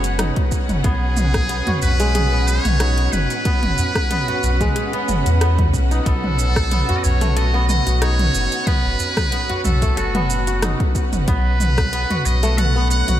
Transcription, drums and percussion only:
0.04 closed hi-hat, shaker
0.19 cross-stick, closed hi-hat, mid tom, shaker
0.36 kick, closed hi-hat
0.52 kick, shaker
0.69 closed hi-hat, mid tom, shaker
0.84 kick, closed hi-hat, shaker
1.17 mid tom, shaker
1.34 kick, cross-stick, closed hi-hat, shaker
1.49 closed hi-hat, shaker
1.67 closed hi-hat, mid tom, udu
1.82 udu, shaker
2.00 closed hi-hat, shaker
2.15 closed hi-hat, mid tom, shaker
2.48 shaker
2.65 closed hi-hat, mid tom, shaker
2.80 cross-stick, closed hi-hat, shaker
2.98 closed hi-hat
3.13 mid tom, shaker
3.30 closed hi-hat, shaker
3.45 kick, closed hi-hat, shaker
3.63 closed hi-hat, mid tom
3.78 udu, shaker
3.95 kick, cross-stick, closed hi-hat, shaker
4.11 closed hi-hat, mid tom, shaker
4.28 closed hi-hat, udu
4.43 udu, shaker
4.61 kick, closed hi-hat, mid tom, shaker
4.76 closed hi-hat, shaker
4.93 closed hi-hat
5.09 mid tom, shaker
5.26 closed hi-hat, shaker
5.41 cross-stick, closed hi-hat, shaker
5.58 kick, closed hi-hat, mid tom
5.74 kick, shaker
5.91 closed hi-hat, shaker
6.06 kick, closed hi-hat, shaker
6.24 mid tom
6.39 shaker
6.56 kick, cross-stick, closed hi-hat, shaker
6.71 closed hi-hat, mid tom, shaker
6.89 closed hi-hat, udu
7.04 udu, shaker
7.21 closed hi-hat, mid tom, shaker
7.37 closed hi-hat, shaker
7.69 mid tom, shaker
7.87 closed hi-hat, shaker
8.02 cross-stick, closed hi-hat, shaker
8.19 closed hi-hat, mid tom
8.34 shaker
8.52 closed hi-hat, shaker
8.67 kick, closed hi-hat, mid tom, shaker
8.99 udu, shaker
9.17 kick, cross-stick, closed hi-hat, mid tom, shaker
9.32 closed hi-hat, shaker
9.49 closed hi-hat, udu
9.64 mid tom, udu, shaker
9.82 kick, closed hi-hat, shaker
9.97 closed hi-hat, shaker
10.15 closed hi-hat, mid tom
10.30 shaker
10.47 closed hi-hat, shaker
10.62 cross-stick, closed hi-hat, mid tom, shaker
10.80 kick, closed hi-hat
10.95 kick, shaker
11.13 closed hi-hat, mid tom, shaker
11.28 kick, closed hi-hat, shaker
11.60 mid tom, shaker
11.78 kick, cross-stick, closed hi-hat, shaker
11.93 closed hi-hat, shaker
12.10 closed hi-hat, mid tom, udu
12.25 udu, shaker
12.43 closed hi-hat, shaker
12.58 closed hi-hat, mid tom, shaker
12.91 shaker
13.08 closed hi-hat, mid tom, shaker

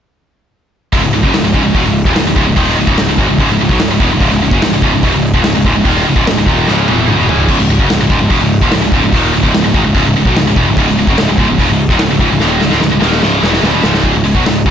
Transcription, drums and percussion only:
0.93 kick, open hi-hat
1.23 kick
1.34 snare, open hi-hat
1.54 kick
1.75 kick, open hi-hat
2.05 kick, snare
2.16 snare, open hi-hat
2.36 kick
2.57 kick, open hi-hat
2.68 snare
2.87 kick
2.97 snare, open hi-hat
3.18 kick
3.38 kick, open hi-hat
3.69 kick, snare
3.79 snare, open hi-hat
4.00 kick
4.20 kick, open hi-hat
4.30 snare
4.51 kick
4.62 snare, open hi-hat
4.82 kick
5.03 kick, open hi-hat
5.34 kick
5.44 snare, open hi-hat
5.65 kick
5.85 kick, open hi-hat
5.97 snare
6.16 kick
6.27 snare, open hi-hat
6.46 kick
6.68 snare
6.88 high tom
6.99 high tom
7.08 mid tom
7.29 floor tom
7.39 floor tom
7.49 kick, crash
7.79 kick
7.90 snare, open hi-hat
8.10 kick
8.31 kick, open hi-hat
8.61 kick, snare
8.71 snare, open hi-hat
8.92 kick
9.13 kick, open hi-hat
9.44 kick
9.54 snare, open hi-hat
9.74 kick
9.95 kick, open hi-hat
10.25 kick
10.36 snare, open hi-hat
10.56 kick
10.77 kick, open hi-hat
10.88 snare
11.07 kick
11.17 snare, open hi-hat
11.38 kick
11.58 kick, open hi-hat
11.89 kick, snare
11.99 snare, open hi-hat
12.19 kick
12.40 snare
12.61 snare
12.72 snare
12.81 snare
13.02 snare
13.12 snare
13.23 snare
13.44 snare
13.53 snare
13.63 snare
13.84 snare
13.94 snare
14.04 kick, open hi-hat
14.25 open hi-hat
14.35 kick
14.46 snare, open hi-hat
14.66 kick, open hi-hat

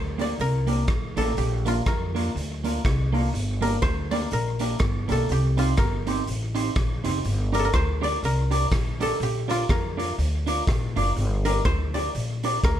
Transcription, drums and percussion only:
0.19 closed hi-hat
0.39 closed hi-hat
0.67 closed hi-hat
0.87 kick, cross-stick, closed hi-hat
1.17 closed hi-hat
1.37 closed hi-hat
1.66 closed hi-hat
1.86 kick, cross-stick, closed hi-hat
2.16 closed hi-hat
2.37 closed hi-hat
2.64 closed hi-hat
2.85 kick, cross-stick, closed hi-hat
3.14 open hi-hat
3.35 closed hi-hat
3.63 closed hi-hat
3.82 kick, cross-stick, closed hi-hat
4.11 closed hi-hat
4.31 closed hi-hat
4.59 closed hi-hat
4.79 kick, cross-stick, closed hi-hat
5.09 closed hi-hat
5.29 closed hi-hat
5.58 closed hi-hat
5.77 kick, cross-stick, closed hi-hat
6.07 closed hi-hat
6.27 closed hi-hat
6.55 closed hi-hat
6.76 kick, cross-stick, closed hi-hat
7.04 closed hi-hat
7.25 closed hi-hat
7.54 closed hi-hat
7.73 kick, cross-stick, closed hi-hat
8.03 closed hi-hat
8.24 closed hi-hat
8.51 closed hi-hat
8.72 kick, cross-stick, closed hi-hat
9.01 closed hi-hat
9.21 closed hi-hat
9.49 closed hi-hat
9.69 kick, cross-stick, closed hi-hat
9.99 closed hi-hat
10.19 closed hi-hat
10.47 closed hi-hat
10.67 kick, cross-stick, closed hi-hat
10.96 closed hi-hat
11.16 closed hi-hat
11.45 closed hi-hat
11.65 kick, cross-stick, closed hi-hat
11.95 closed hi-hat
12.15 closed hi-hat
12.43 closed hi-hat
12.64 kick, cross-stick, closed hi-hat

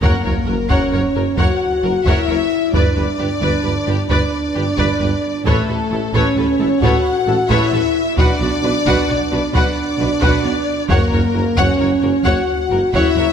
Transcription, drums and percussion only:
0.02 taiko
0.70 taiko
1.38 taiko
2.06 taiko
2.74 taiko
3.42 taiko
4.10 taiko
4.78 taiko
5.46 taiko
6.15 taiko
6.82 taiko
7.50 taiko
8.18 taiko
8.86 taiko
9.54 taiko
10.22 taiko
10.90 taiko
11.58 taiko
12.26 taiko
12.94 taiko

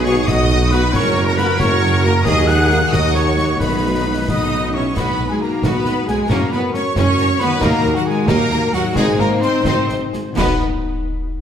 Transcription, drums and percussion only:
0.06 snare
0.28 concert bass drum, snare
0.50 snare
0.72 snare
0.93 concert bass drum, snare
1.38 snare
1.60 concert bass drum, snare
2.25 concert bass drum, snare, crash
2.48 snare
2.70 snare
2.93 concert bass drum, snare
3.15 snare
3.38 snare
3.60 concert bass drum, snare
4.29 concert bass drum, snare
4.97 concert bass drum, snare, crash
5.63 concert bass drum, snare
5.86 snare
6.08 snare
6.30 concert bass drum, snare
6.74 snare
6.96 concert bass drum, snare
7.18 snare
7.40 snare
7.61 concert bass drum, snare, crash
8.28 concert bass drum, snare
8.51 snare
8.73 snare
8.96 concert bass drum, snare
9.42 snare
9.65 concert bass drum, snare
9.89 snare
10.13 snare
10.37 concert bass drum, snare, crash

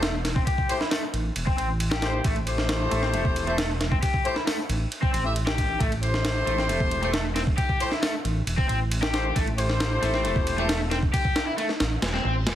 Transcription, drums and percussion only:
0.03 snare, ride
0.25 snare, ride
0.36 kick
0.47 kick, ride
0.58 kick
0.69 ride
0.81 snare
0.91 snare, open hi-hat
1.14 ride
1.36 ride
1.47 kick
1.58 ride
1.80 ride
1.91 snare
2.02 snare, ride
2.24 kick, ride
2.36 ride
2.47 ride
2.58 snare
2.69 snare, ride
2.91 ride
3.03 snare
3.14 ride
3.25 kick
3.36 ride
3.47 ride
3.58 snare, ride
3.81 snare, ride
3.92 kick
4.03 kick, ride
4.14 kick
4.25 ride
4.36 snare
4.47 snare, open hi-hat
4.69 ride
4.92 ride
5.03 kick
5.14 ride
5.36 ride
5.47 snare
5.58 kick, ride
5.80 kick, ride
5.92 ride
6.03 ride
6.14 snare
6.25 snare, ride
6.47 ride
6.58 snare
6.69 ride
6.80 kick
6.91 ride
7.03 ride
7.14 snare, ride
7.36 snare, ride
7.47 kick
7.58 kick, ride
7.69 kick
7.80 ride
7.92 snare
8.03 snare, open hi-hat
8.25 ride
8.47 ride
8.58 kick
8.69 ride
8.91 ride
9.03 snare
9.14 snare, ride
9.36 kick, ride
9.47 ride
9.58 ride
9.70 snare
9.80 snare, ride
10.03 ride
10.14 snare
10.25 ride
10.36 kick
10.47 ride
10.58 ride
10.69 snare, ride
10.91 snare, ride
11.03 kick
11.14 kick, ride
11.25 kick
11.36 snare, ride
11.58 ride
11.69 snare
11.80 snare, ride
12.02 snare, ride
12.14 snare
12.47 snare, ride

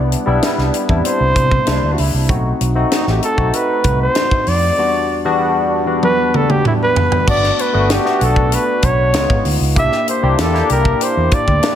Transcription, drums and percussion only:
0.12 closed hi-hat
0.43 snare, closed hi-hat
0.58 snare
0.74 closed hi-hat
0.89 kick
1.05 closed hi-hat
1.36 kick, closed hi-hat
1.51 kick
1.67 snare, closed hi-hat
1.98 open hi-hat
2.29 kick, closed hi-hat
2.61 closed hi-hat
2.92 snare, closed hi-hat
3.07 snare
3.23 closed hi-hat
3.38 kick
3.53 closed hi-hat
3.84 kick, closed hi-hat
4.15 snare, closed hi-hat
4.31 kick
4.47 open hi-hat
6.03 high tom
6.34 mid tom
6.50 mid tom
6.65 mid tom
6.96 floor tom
7.12 floor tom
7.28 kick, crash
7.44 snare
7.59 closed hi-hat
7.90 snare, closed hi-hat
8.06 snare
8.21 closed hi-hat
8.36 kick
8.52 closed hi-hat
8.82 kick, closed hi-hat
9.14 snare, closed hi-hat
9.30 kick
9.45 open hi-hat
9.76 kick, closed hi-hat
9.92 snare
10.08 closed hi-hat
10.39 snare, closed hi-hat
10.55 snare
10.70 closed hi-hat
10.85 kick
11.01 closed hi-hat
11.31 kick, closed hi-hat
11.48 kick
11.63 snare, closed hi-hat

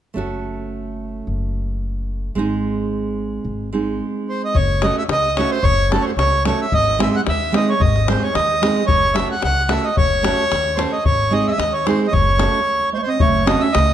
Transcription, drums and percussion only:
4.55 davul low
4.82 davul high
5.09 davul high
5.37 davul high
5.65 davul low
5.92 davul high
6.19 davul high
6.45 davul high
6.72 davul low
7.00 davul high
7.27 davul high
7.54 davul high
7.82 davul low
7.96 davul high
8.08 davul high
8.23 davul high
8.35 davul high
8.63 davul high
8.76 davul high
8.88 davul low
9.16 davul high
9.42 davul high
9.69 davul high
9.97 davul low
10.24 davul high
10.52 davul high
10.79 davul high
11.05 davul low
11.60 davul high
11.87 davul high
12.14 davul low
12.29 davul high
12.40 davul high
12.54 davul high
13.20 davul low
13.47 davul high
13.75 davul high

